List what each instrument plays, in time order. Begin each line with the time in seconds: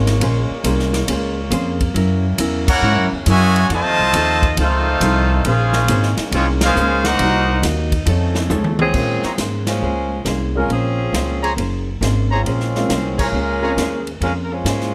Already playing: upright bass G#1, saxophone section A#2 G#3 A#3 C#5
0.07 snare, ride
0.20 upright bass A#1, hollow-body jazz guitar A#3 C#4 G#4 C5, ride
0.50 muted upright bass stroke
0.64 upright bass C2, hollow-body jazz guitar A#3 C#4 G#4 C5, hi-hat pedal, ride
0.79 snare
0.93 snare, ride
1.08 upright bass C#2, hollow-body jazz guitar A#3 C#4 G#4 C5, ride
1.50 upright bass F2, hollow-body jazz guitar A#3 C#4 G#4 C5, hi-hat pedal, ride
1.81 kick, ride
1.94 upright bass F#2, saxophone section C#3 F#3 E4, hollow-body jazz guitar F#3 C#4 E4 A#4, ride
2.38 upright bass E2, hollow-body jazz guitar F#3 C#4 E4 A#4, hi-hat pedal, ride
2.68 trombone section A#3 C#4 F#4, trumpet section E4 A#4 C#5 F#5, kick, crash
2.82 upright bass G#2, hollow-body jazz guitar F#3 C#4 E4 A#4
2.96 upright bass F#2
3.12 upright bass E2
3.26 upright bass F#2, trombone section C#3 E3 G#3, hollow-body jazz guitar F#3 C#4 E4 A#4, trumpet section F#4 E5, hi-hat pedal, ride
3.30 trumpet section C#5 G#5
3.56 ride
3.69 upright bass F2, trombone section C3 D#3 A3, saxophone section D#3 F3 A3 D#4, hollow-body jazz guitar F3 C4 D#4 A4, ride
3.73 trumpet section F4 C5 D#5 A5
3.84 upright bass D#2
3.98 upright bass C2
4.13 upright bass D#2, hollow-body jazz guitar F3 C4 D#4 A4, hi-hat pedal, ride
4.42 kick, ride
4.57 upright bass C#2, hollow-body jazz guitar F3 C4 D#4 A4, trombone section A3 C4 F4, trumpet section D#4 A4 C5, ride
4.61 trumpet section F5
5.00 upright bass C2, hollow-body jazz guitar F3 C4 D#4 A4, hi-hat pedal, ride
5.45 upright bass A#1, trombone section G#3 C#4 F4, saxophone section G#3 A#3 C#4, hollow-body jazz guitar A#3 C#4 G#4 C5, trumpet section C#4 G#4 C5 F5, ride
5.73 snare
5.88 upright bass G#1, hollow-body jazz guitar A#3 C#4 G#4 C5, hi-hat pedal, ride
6.03 snare
6.17 muted upright bass stroke, snare, ride
6.31 upright bass C2, trombone section F3 G#3 C#4, trumpet section G#3 C4 F4 C#5, hollow-body jazz guitar A#3 C#4 G#4 C5, ride
6.61 trombone section G#3 C#4 F4, trumpet section C#4 G#4 C5 F5, snare, ride
6.75 upright bass C#2, hollow-body jazz guitar A#3 C#4 G#4 C5, hi-hat pedal
7.04 trombone section A#3 D#4 F#4, trumpet section D#4 A#4 C5 F#5, snare, ride
7.19 upright bass C2, hollow-body jazz guitar C3 A#3 D#4, saxophone section F#3 D#4, ride
7.24 hollow-body jazz guitar F#4
7.62 upright bass D#2, hollow-body jazz guitar C3 A#3 D#4 F#4, snare, hi-hat pedal, ride
7.92 kick, ride
8.05 upright bass F2, saxophone section C#3 F3 A3, hollow-body jazz guitar F3 D#4 A4 C#5, ride
8.35 snare
8.50 upright bass C#2, hollow-body jazz guitar F3 D#4 A4 C#5, floor tom, hi-hat pedal
8.64 high tom
8.79 saxophone section F3 C4 C#4 G#4, high tom
8.94 upright bass A#2, upright piano G#3 A#3 C4 C#4 F4, hollow-body jazz guitar A#3 C#4 G#4 C5, kick, crash
9.23 trumpet section G#4 C5 C#5 A#5, muted upright bass stroke, snare
9.38 upright bass G#2, hollow-body jazz guitar A#3 C#4 G#4 C5, snare, hi-hat pedal, ride
9.67 saxophone section G#3 C#4 F4 C5, snare, ride
9.81 upright bass C#2, hollow-body jazz guitar A#3 C#4 G#4 C5
10.25 upright bass C2, hollow-body jazz guitar A#3 C#4 G#4 C5, snare, hi-hat pedal, ride
10.55 upright piano G#3 A#3 C4 C#4 F4, saxophone section G#3 C#4 F4 A#4
10.68 upright bass A#1, saxophone section F3 C4 G#4, hollow-body jazz guitar A#3 C#4, ride
10.72 saxophone section C#4, hollow-body jazz guitar G#4 C5
11.12 upright bass C#2, hollow-body jazz guitar A#3 C#4 G#4 C5, snare, hi-hat pedal, ride
11.42 trumpet section G#4 C5 C#5 A#5, ride
11.57 upright bass F#1, hollow-body jazz guitar A#3 C#4 G#4 C5, ride
12.01 upright bass G#1, hollow-body jazz guitar A#3 C#4 G#4 C5, snare, hi-hat pedal, ride
12.30 saxophone section G#3 C4 C#4 F4, trumpet section G#4 C5 C#5 A#5
12.45 upright bass A#1, hollow-body jazz guitar A#3 C#4 G#4, ride
12.49 hollow-body jazz guitar C5
12.60 snare
12.75 upright piano G#3 A#3 C4 C#4 F4, snare
12.89 upright bass C2, hollow-body jazz guitar A#3 C#4 G#4 C5, snare, hi-hat pedal, ride
13.18 saxophone section G#3 C#4 F4 A#4, trumpet section G#4 C5 C#5 A#5, kick, crash
13.32 upright bass C#2, hollow-body jazz guitar A#3 C#4 G#4
13.36 hollow-body jazz guitar C5
13.62 upright piano G#3 A#3 C4 C#4 F4, trumpet section G#4 C5 C#5 A#5
13.76 upright bass D#2, hollow-body jazz guitar A#3 C#4 G#4 C5, snare, hi-hat pedal, ride
14.07 ride
14.21 upright bass F2, saxophone section G#3 C#4 F4 A#4, hollow-body jazz guitar A#3 C#4 G#4 C5, ride
14.43 saxophone section A#4
14.52 saxophone section G#3 C#4 F4 C5
14.64 upright bass G#2, hollow-body jazz guitar A#3 C#4 G#4 C5, snare, hi-hat pedal, ride
14.81 snare